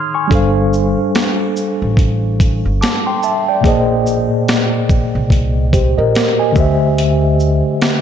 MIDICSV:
0, 0, Header, 1, 4, 480
1, 0, Start_track
1, 0, Tempo, 833333
1, 179, Time_signature, 4, 2, 24, 8
1, 4616, End_track
2, 0, Start_track
2, 0, Title_t, "Tine electric piano"
2, 0, Program_c, 0, 4
2, 0, Control_c, 0, 64, 127
2, 0, Note_on_c, 0, 84, 61
2, 0, Note_on_c, 0, 87, 49
2, 0, Note_on_c, 0, 89, 68
2, 0, Note_on_c, 0, 92, 55
2, 77, Note_off_c, 0, 89, 0
2, 78, Note_off_c, 0, 84, 0
2, 83, Note_on_c, 0, 85, 62
2, 86, Note_on_c, 0, 80, 52
2, 158, Note_on_c, 0, 55, 68
2, 169, Note_on_c, 0, 62, 68
2, 180, Note_on_c, 0, 69, 68
2, 185, Control_c, 0, 64, 0
2, 188, Note_off_c, 0, 92, 0
2, 190, Note_off_c, 0, 87, 0
2, 191, Note_on_c, 0, 72, 73
2, 202, Note_on_c, 0, 77, 81
2, 289, Control_c, 0, 64, 127
2, 311, Note_off_c, 0, 85, 0
2, 312, Note_off_c, 0, 80, 0
2, 1607, Note_off_c, 0, 77, 0
2, 1620, Note_on_c, 0, 86, 62
2, 1624, Note_on_c, 0, 81, 50
2, 1756, Note_off_c, 0, 86, 0
2, 1758, Note_off_c, 0, 81, 0
2, 1765, Note_on_c, 0, 84, 62
2, 1767, Note_on_c, 0, 79, 54
2, 1855, Note_off_c, 0, 84, 0
2, 1856, Note_off_c, 0, 79, 0
2, 1862, Note_on_c, 0, 81, 66
2, 1866, Note_on_c, 0, 76, 51
2, 1997, Note_off_c, 0, 81, 0
2, 1999, Note_off_c, 0, 76, 0
2, 2007, Note_on_c, 0, 79, 62
2, 2010, Note_on_c, 0, 74, 51
2, 2065, Note_off_c, 0, 55, 0
2, 2071, Note_off_c, 0, 62, 0
2, 2076, Note_off_c, 0, 69, 0
2, 2079, Note_on_c, 0, 46, 71
2, 2081, Note_off_c, 0, 72, 0
2, 2090, Note_on_c, 0, 58, 66
2, 2101, Note_on_c, 0, 68, 67
2, 2105, Control_c, 0, 64, 0
2, 2112, Note_on_c, 0, 72, 68
2, 2122, Note_on_c, 0, 75, 89
2, 2221, Control_c, 0, 64, 127
2, 2233, Note_off_c, 0, 79, 0
2, 2234, Note_off_c, 0, 74, 0
2, 3277, Note_off_c, 0, 68, 0
2, 3282, Note_off_c, 0, 72, 0
2, 3287, Note_off_c, 0, 75, 0
2, 3302, Note_on_c, 0, 72, 59
2, 3305, Note_on_c, 0, 67, 55
2, 3437, Note_off_c, 0, 72, 0
2, 3439, Note_off_c, 0, 67, 0
2, 3443, Note_on_c, 0, 75, 68
2, 3446, Note_on_c, 0, 70, 60
2, 3671, Note_off_c, 0, 75, 0
2, 3673, Note_off_c, 0, 70, 0
2, 3683, Note_on_c, 0, 80, 59
2, 3687, Note_on_c, 0, 75, 49
2, 3746, Note_off_c, 0, 46, 0
2, 3751, Note_off_c, 0, 58, 0
2, 3757, Note_on_c, 0, 50, 73
2, 3767, Note_on_c, 0, 57, 64
2, 3779, Note_on_c, 0, 67, 65
2, 3786, Control_c, 0, 64, 0
2, 3789, Note_on_c, 0, 72, 62
2, 3801, Note_on_c, 0, 76, 81
2, 3895, Control_c, 0, 64, 127
2, 3911, Note_off_c, 0, 80, 0
2, 3913, Note_off_c, 0, 75, 0
2, 4616, Note_off_c, 0, 50, 0
2, 4616, Note_off_c, 0, 57, 0
2, 4616, Note_off_c, 0, 67, 0
2, 4616, Note_off_c, 0, 72, 0
2, 4616, Note_off_c, 0, 76, 0
2, 4616, End_track
3, 0, Start_track
3, 0, Title_t, "Upright bass"
3, 0, Program_c, 1, 32
3, 181, Note_on_c, 1, 31, 105
3, 541, Note_off_c, 1, 31, 0
3, 1048, Note_on_c, 1, 33, 82
3, 1502, Note_off_c, 1, 33, 0
3, 1529, Note_on_c, 1, 31, 74
3, 1613, Note_off_c, 1, 31, 0
3, 2099, Note_on_c, 1, 34, 90
3, 2460, Note_off_c, 1, 34, 0
3, 2967, Note_on_c, 1, 36, 81
3, 3421, Note_off_c, 1, 36, 0
3, 3447, Note_on_c, 1, 34, 81
3, 3532, Note_off_c, 1, 34, 0
3, 3780, Note_on_c, 1, 38, 88
3, 4380, Note_off_c, 1, 38, 0
3, 4616, End_track
4, 0, Start_track
4, 0, Title_t, "Drums"
4, 178, Note_on_c, 9, 36, 109
4, 185, Note_on_c, 9, 42, 69
4, 235, Note_off_c, 9, 36, 0
4, 243, Note_off_c, 9, 42, 0
4, 422, Note_on_c, 9, 82, 43
4, 479, Note_off_c, 9, 82, 0
4, 663, Note_on_c, 9, 42, 61
4, 666, Note_on_c, 9, 38, 112
4, 720, Note_off_c, 9, 42, 0
4, 724, Note_off_c, 9, 38, 0
4, 900, Note_on_c, 9, 82, 48
4, 958, Note_off_c, 9, 82, 0
4, 1135, Note_on_c, 9, 36, 88
4, 1145, Note_on_c, 9, 42, 62
4, 1192, Note_off_c, 9, 36, 0
4, 1203, Note_off_c, 9, 42, 0
4, 1382, Note_on_c, 9, 36, 92
4, 1386, Note_on_c, 9, 42, 51
4, 1386, Note_on_c, 9, 82, 52
4, 1440, Note_off_c, 9, 36, 0
4, 1444, Note_off_c, 9, 42, 0
4, 1444, Note_off_c, 9, 82, 0
4, 1627, Note_on_c, 9, 42, 64
4, 1633, Note_on_c, 9, 38, 103
4, 1685, Note_off_c, 9, 42, 0
4, 1691, Note_off_c, 9, 38, 0
4, 1859, Note_on_c, 9, 82, 40
4, 1917, Note_off_c, 9, 82, 0
4, 2097, Note_on_c, 9, 36, 109
4, 2105, Note_on_c, 9, 42, 74
4, 2155, Note_off_c, 9, 36, 0
4, 2163, Note_off_c, 9, 42, 0
4, 2342, Note_on_c, 9, 82, 47
4, 2399, Note_off_c, 9, 82, 0
4, 2583, Note_on_c, 9, 42, 60
4, 2587, Note_on_c, 9, 38, 114
4, 2641, Note_off_c, 9, 42, 0
4, 2644, Note_off_c, 9, 38, 0
4, 2819, Note_on_c, 9, 36, 95
4, 2820, Note_on_c, 9, 82, 46
4, 2877, Note_off_c, 9, 36, 0
4, 2878, Note_off_c, 9, 82, 0
4, 3054, Note_on_c, 9, 36, 82
4, 3065, Note_on_c, 9, 42, 68
4, 3111, Note_off_c, 9, 36, 0
4, 3122, Note_off_c, 9, 42, 0
4, 3301, Note_on_c, 9, 36, 91
4, 3305, Note_on_c, 9, 42, 51
4, 3305, Note_on_c, 9, 82, 46
4, 3358, Note_off_c, 9, 36, 0
4, 3362, Note_off_c, 9, 42, 0
4, 3362, Note_off_c, 9, 82, 0
4, 3545, Note_on_c, 9, 42, 65
4, 3550, Note_on_c, 9, 38, 100
4, 3602, Note_off_c, 9, 42, 0
4, 3608, Note_off_c, 9, 38, 0
4, 3776, Note_on_c, 9, 82, 43
4, 3777, Note_on_c, 9, 36, 105
4, 3834, Note_off_c, 9, 82, 0
4, 3835, Note_off_c, 9, 36, 0
4, 4023, Note_on_c, 9, 42, 77
4, 4081, Note_off_c, 9, 42, 0
4, 4261, Note_on_c, 9, 82, 40
4, 4318, Note_off_c, 9, 82, 0
4, 4501, Note_on_c, 9, 42, 63
4, 4505, Note_on_c, 9, 38, 119
4, 4559, Note_off_c, 9, 42, 0
4, 4563, Note_off_c, 9, 38, 0
4, 4616, End_track
0, 0, End_of_file